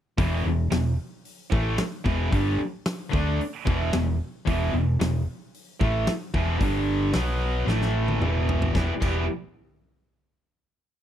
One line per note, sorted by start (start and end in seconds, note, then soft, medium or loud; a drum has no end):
0.18 0.43 E1 medium
0.18 0.43 E2 medium
0.18 0.44 B2 loud
0.18 0.45 E3 loud
0.18 kick loud
0.18 open hi-hat medium
0.44 0.70 E1 medium
0.44 0.66 E2 medium
0.44 0.66 B2 medium
0.70 0.96 E1 medium
0.70 0.92 E2 medium
0.70 0.93 B2 medium
0.70 snare loud
0.70 open hi-hat medium
1.25 open hi-hat medium
1.50 1.77 A1 medium
1.50 1.77 A2 medium
1.50 1.77 E3 loud
1.50 1.78 A3 medium
1.50 kick loud
1.78 snare loud
1.78 open hi-hat medium
2.04 2.31 E1 medium
2.04 2.31 E2 medium
2.04 2.31 B2 medium
2.04 2.32 E3 loud
2.04 kick medium
2.31 2.58 G1 loud
2.31 2.58 G2 medium
2.31 2.58 D3 medium
2.31 2.59 G3 medium
2.31 kick loud
2.31 open hi-hat medium
2.59 muted distorted electric guitar stroke medium
2.86 snare loud
2.86 open hi-hat medium
3.12 3.38 D2 loud
3.12 3.38 D3 medium
3.12 3.39 A3 medium
3.12 3.39 D4 loud
3.12 kick loud
3.39 muted distorted electric guitar stroke medium
3.39 muted fingered electric bass stroke soft
3.39 open hi-hat medium
3.65 3.91 E1 medium
3.65 3.92 E2 medium
3.65 3.92 B2 medium
3.65 3.93 E3 medium
3.65 kick loud
3.93 4.19 E1 medium
3.93 4.15 E2 medium
3.93 4.16 B2 medium
3.93 snare loud
3.93 open hi-hat medium
4.47 4.72 E1 loud
4.47 4.73 E2 medium
4.47 4.73 B2 medium
4.47 4.73 E3 medium
4.47 kick loud
4.47 open hi-hat medium
4.73 4.98 E1 medium
4.73 4.95 E2 medium
4.73 4.96 B2 medium
5.00 5.25 E1 medium
5.00 5.21 E2 medium
5.00 5.21 B2 medium
5.00 snare loud
5.00 open hi-hat medium
5.54 open hi-hat medium
5.80 6.06 A1 medium
5.80 6.06 A2 medium
5.80 6.06 E3 medium
5.80 6.07 A3 loud
5.80 kick loud
6.07 snare loud
6.07 open hi-hat medium
6.34 6.59 E1 medium
6.34 6.58 E2 medium
6.34 6.59 B2 loud
6.34 6.59 E3 loud
6.34 kick loud
6.58 7.11 G1 loud
6.58 7.12 G2 medium
6.58 7.13 D3 loud
6.58 7.13 G3 loud
6.58 kick loud
6.58 open hi-hat medium
7.13 7.64 B1 medium
7.13 7.67 B2 medium
7.13 7.67 F#3 medium
7.13 7.67 B3 medium
7.13 snare loud
7.13 open hi-hat medium
7.67 8.17 A1 medium
7.67 8.21 A2 medium
7.67 8.21 E3 medium
7.67 8.21 A3 loud
7.67 snare medium
7.82 snare medium
8.08 high tom medium
8.20 8.71 E1 medium
8.20 8.73 E2 medium
8.20 8.74 B2 loud
8.20 8.74 E3 medium
8.20 mid tom medium
8.49 floor tom medium
8.62 floor tom medium
8.75 8.90 E1 medium
8.75 8.91 E2 medium
8.75 8.91 B2 medium
8.75 8.91 E3 loud
8.75 8.92 G3 medium
8.75 8.92 B3 loud
8.75 8.92 E4 loud
8.75 8.92 G4 loud
8.75 kick medium
8.75 snare medium
9.01 9.27 E1 medium
9.01 9.23 E2 loud
9.01 9.24 B2 loud
9.01 9.24 E3 loud
9.01 9.24 G3 loud
9.01 9.24 B3 loud
9.01 9.23 E4 loud
9.01 9.24 G4 loud
9.01 kick loud
9.01 crash medium